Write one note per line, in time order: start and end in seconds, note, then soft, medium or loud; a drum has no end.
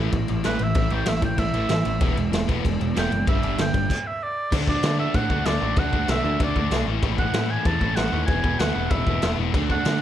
0.00 0.11 A2 loud
0.00 0.74 A2 medium
0.00 0.12 E3 medium
0.00 0.77 E3 medium
0.00 0.12 A3 loud
0.00 0.76 A3 loud
0.12 0.24 A1 medium
0.12 0.27 A2 medium
0.12 0.27 E3 medium
0.12 kick loud
0.12 crash medium
0.28 0.40 A1 medium
0.28 0.42 A2 medium
0.28 0.43 E3 medium
0.28 crash medium
0.43 0.56 A1 medium
0.43 0.59 A2 medium
0.43 0.59 E3 medium
0.43 0.59 A3 loud
0.43 0.65 B4 loud
0.43 snare loud
0.43 crash medium
0.59 0.72 A1 medium
0.59 0.74 A2 medium
0.59 0.74 E3 medium
0.59 crash medium
0.63 0.92 E5 loud
0.75 0.87 A1 medium
0.75 0.90 A2 medium
0.75 0.90 E3 medium
0.75 2.02 A3 loud
0.75 kick loud
0.75 crash medium
0.90 1.03 A1 loud
0.90 1.05 A2 medium
0.90 1.05 E3 medium
0.90 1.06 A3 medium
0.90 crash medium
0.95 1.10 G5 medium
1.06 1.19 A1 medium
1.06 1.21 A2 medium
1.06 1.21 E3 medium
1.06 1.23 E5 medium
1.06 snare loud
1.06 crash medium
1.22 1.34 A1 medium
1.22 1.36 A2 medium
1.22 1.36 E3 medium
1.22 1.41 G5 loud
1.22 kick medium
1.22 crash medium
1.38 1.50 A1 loud
1.38 1.52 A2 medium
1.38 1.53 E3 medium
1.38 2.30 E5 loud
1.38 kick medium
1.38 crash medium
1.54 1.65 A1 loud
1.54 1.68 A2 loud
1.54 1.68 E3 loud
1.54 1.69 A3 loud
1.54 crash medium
1.69 1.81 A1 medium
1.69 1.83 A2 medium
1.69 1.84 E3 medium
1.69 snare loud
1.69 crash medium
1.85 1.97 A1 loud
1.85 2.00 A2 medium
1.85 2.00 E3 medium
1.85 crash medium
2.01 2.13 E1 loud
2.01 3.26 E2 medium
2.01 3.26 B2 loud
2.01 2.15 E3 loud
2.01 2.16 G#3 loud
2.01 2.17 B3 loud
2.01 kick loud
2.01 crash medium
2.16 2.28 E1 loud
2.16 2.30 E3 medium
2.16 2.31 G#3 medium
2.16 crash medium
2.32 2.44 E1 medium
2.32 2.46 E3 medium
2.32 2.47 G#3 medium
2.32 snare loud
2.32 crash medium
2.48 2.60 E1 medium
2.48 2.63 E3 medium
2.48 2.63 G#3 medium
2.48 2.63 B3 loud
2.48 kick loud
2.48 crash medium
2.65 2.76 E1 loud
2.65 2.79 E3 medium
2.65 2.79 G#3 loud
2.65 kick medium
2.65 crash medium
2.80 2.91 E1 loud
2.80 2.94 E3 medium
2.80 2.94 G#3 medium
2.80 crash medium
2.96 3.07 E1 medium
2.96 3.09 E3 medium
2.96 3.10 G#3 loud
2.96 3.11 B3 loud
2.96 3.27 G5 loud
2.96 snare loud
2.96 crash medium
3.11 3.23 F#1 medium
3.11 3.25 E3 medium
3.11 3.25 G#3 medium
3.11 crash medium
3.27 3.39 G1 medium
3.27 3.41 G2 loud
3.27 3.42 D3 loud
3.27 3.42 G3 loud
3.27 3.58 E5 medium
3.27 kick loud
3.27 crash medium
3.42 3.54 G1 medium
3.42 3.56 G2 medium
3.42 3.57 D3 medium
3.42 3.58 G3 medium
3.42 crash medium
3.57 3.70 G1 medium
3.57 3.72 G2 medium
3.57 3.72 D3 medium
3.57 4.09 G5 loud
3.57 snare loud
3.57 crash medium
3.74 3.85 G1 medium
3.74 3.88 G2 medium
3.74 3.88 D3 medium
3.74 kick loud
3.74 crash medium
3.90 kick medium
3.90 crash loud
4.07 4.25 E5 medium
4.23 4.52 D5 loud
4.52 4.75 D2 medium
4.52 4.70 D3 medium
4.52 4.70 A3 loud
4.52 4.69 D4 loud
4.52 4.68 F#4 loud
4.52 kick loud
4.52 crash loud
4.52 crash medium
4.68 4.84 D3 medium
4.68 4.84 A3 medium
4.68 4.85 D4 medium
4.68 4.85 F#4 loud
4.68 4.97 D5 loud
4.68 kick medium
4.83 5.06 D3 loud
4.83 4.99 D3 medium
4.83 5.00 A3 medium
4.83 4.98 D4 medium
4.83 4.98 F#4 medium
4.83 snare loud
4.83 crash medium
4.99 5.14 D3 medium
4.99 5.15 A3 medium
4.99 5.15 D4 medium
4.99 5.15 F#4 loud
4.99 5.17 E5 loud
5.14 5.26 A2 medium
5.14 5.30 D3 medium
5.14 5.31 A3 loud
5.14 5.30 D4 loud
5.14 5.30 F#4 loud
5.14 5.48 F#5 loud
5.14 kick loud
5.14 crash medium
5.30 5.42 D2 medium
5.30 5.44 D3 medium
5.30 5.46 A3 medium
5.30 5.45 D4 loud
5.30 5.45 F#4 loud
5.30 kick medium
5.45 5.57 D2 medium
5.45 5.61 D3 medium
5.45 5.61 A3 medium
5.45 5.60 D4 medium
5.45 5.59 F#4 loud
5.45 5.80 D5 loud
5.45 snare loud
5.45 crash medium
5.61 5.73 A1 loud
5.61 5.76 D3 medium
5.61 5.77 A3 medium
5.61 5.77 D4 medium
5.61 5.77 F#4 loud
5.76 5.88 D2 medium
5.76 5.93 D3 loud
5.76 5.94 A3 loud
5.76 5.92 D4 loud
5.76 5.92 F#4 loud
5.76 6.12 F#5 loud
5.76 kick loud
5.76 crash medium
5.93 6.04 D2 loud
5.93 6.08 D3 medium
5.93 6.09 A3 medium
5.93 6.09 D4 medium
5.93 6.10 F#4 loud
5.93 kick medium
6.08 6.20 B1 loud
6.08 6.25 D3 medium
6.08 6.26 A3 medium
6.08 6.24 D4 medium
6.08 6.24 F#4 medium
6.08 6.41 E5 loud
6.08 snare loud
6.08 crash medium
6.24 6.36 D2 medium
6.24 6.39 D3 medium
6.24 6.40 A3 medium
6.24 6.41 D4 medium
6.24 6.41 F#4 medium
6.40 6.52 D2 loud
6.40 6.57 D3 loud
6.40 6.56 A3 loud
6.40 6.56 D4 loud
6.40 6.55 F#4 loud
6.40 6.86 D5 medium
6.40 kick loud
6.40 crash medium
6.56 6.67 D2 loud
6.56 6.71 D3 medium
6.56 6.71 A3 medium
6.56 6.72 D4 loud
6.56 6.72 F#4 medium
6.56 kick medium
6.71 6.83 B1 medium
6.71 6.86 D3 medium
6.71 6.86 A3 medium
6.71 6.87 D4 loud
6.71 6.87 F#4 loud
6.71 snare loud
6.71 crash medium
6.86 6.98 A1 loud
6.86 7.03 A2 loud
6.86 7.03 E3 loud
6.86 7.02 A3 loud
6.86 7.02 C#4 loud
6.86 7.02 E4 loud
7.03 7.26 A1 loud
7.03 7.18 A2 medium
7.03 7.19 E3 loud
7.03 7.19 A3 loud
7.03 7.19 C#4 loud
7.03 7.20 E4 loud
7.03 kick loud
7.03 crash medium
7.18 7.34 A2 medium
7.18 7.35 E3 medium
7.18 7.34 A3 medium
7.18 7.34 C#4 medium
7.18 7.34 E4 medium
7.18 7.52 F#5 loud
7.18 kick medium
7.33 7.56 A2 medium
7.33 7.49 A2 medium
7.33 7.50 E3 medium
7.33 7.50 A3 medium
7.33 7.50 C#4 medium
7.33 7.52 E4 medium
7.33 snare loud
7.33 crash medium
7.50 7.66 A2 medium
7.50 7.66 E3 medium
7.50 7.65 A3 loud
7.50 7.65 C#4 medium
7.50 7.64 E4 loud
7.50 7.68 G#5 loud
7.65 7.77 E2 medium
7.65 7.80 A2 medium
7.65 7.80 E3 medium
7.65 7.80 A3 loud
7.65 7.81 C#4 loud
7.65 7.81 E4 loud
7.65 7.97 A5 loud
7.65 kick loud
7.65 crash medium
7.81 7.92 A1 medium
7.81 7.97 A2 medium
7.81 7.96 E3 medium
7.81 7.95 A3 medium
7.81 7.95 C#4 loud
7.81 7.94 E4 medium
7.81 kick medium
7.95 8.08 A1 loud
7.95 8.10 A2 medium
7.95 8.10 E3 medium
7.95 8.11 A3 medium
7.95 8.12 C#4 medium
7.95 8.11 E4 medium
7.95 8.26 F#5 loud
7.95 snare loud
7.95 crash medium
8.11 8.24 D#2 medium
8.11 8.27 A2 medium
8.11 8.27 E3 medium
8.11 8.27 A3 medium
8.11 8.28 C#4 loud
8.11 8.28 E4 loud
8.26 8.40 E1 loud
8.26 8.44 E2 loud
8.26 8.43 B2 medium
8.26 8.43 E3 loud
8.26 8.43 G#3 loud
8.26 8.42 B3 loud
8.26 8.41 E4 loud
8.26 8.61 G#5 loud
8.26 kick loud
8.26 crash medium
8.43 8.56 E1 medium
8.43 8.58 E2 medium
8.43 8.59 B2 loud
8.43 8.58 E3 medium
8.43 8.59 G#3 medium
8.43 8.59 B3 medium
8.43 8.60 E4 loud
8.43 kick medium
8.59 8.71 D2 loud
8.59 8.76 E2 medium
8.59 8.75 B2 medium
8.59 8.75 E3 medium
8.59 8.75 G#3 medium
8.59 8.75 B3 medium
8.59 8.74 E4 medium
8.59 8.92 F#5 loud
8.59 snare loud
8.59 crash medium
8.75 8.87 E1 medium
8.75 8.90 E2 medium
8.75 8.91 B2 loud
8.75 8.89 E3 medium
8.75 8.90 G#3 medium
8.75 8.91 B3 medium
8.75 8.91 E4 medium
8.90 9.03 E1 medium
8.90 9.08 E2 loud
8.90 9.07 B2 loud
8.90 9.07 E3 loud
8.90 9.07 G#3 medium
8.90 9.07 B3 loud
8.90 9.06 E4 loud
8.90 9.38 E5 medium
8.90 kick loud
8.90 crash medium
9.07 9.18 E1 medium
9.07 9.21 E2 medium
9.07 9.22 B2 medium
9.07 9.20 E3 medium
9.07 9.21 G#3 medium
9.07 9.21 B3 medium
9.07 9.22 E4 loud
9.07 kick medium
9.22 9.34 E1 medium
9.22 9.39 E2 medium
9.22 9.38 B2 medium
9.22 9.38 E3 medium
9.22 9.37 G#3 medium
9.22 9.37 B3 loud
9.22 9.36 E4 medium
9.22 snare loud
9.22 crash medium
9.37 9.50 E1 medium
9.37 9.54 E2 medium
9.37 9.54 B2 medium
9.37 9.53 E3 medium
9.37 9.53 G#3 medium
9.37 9.53 B3 loud
9.37 9.53 E4 loud
9.53 9.77 D2 loud
9.53 9.70 D3 loud
9.53 9.70 A3 loud
9.53 9.69 D4 loud
9.53 9.69 F#4 loud
9.53 kick loud
9.53 crash medium
9.69 9.84 D3 medium
9.69 9.85 A3 medium
9.69 9.85 D4 medium
9.69 9.85 F#4 medium
9.69 10.02 F#5 loud
9.69 kick medium
9.84 10.02 D3 medium
9.84 10.02 A3 medium
9.84 10.01 D4 medium
9.84 10.00 F#4 medium
9.84 snare loud
9.84 crash medium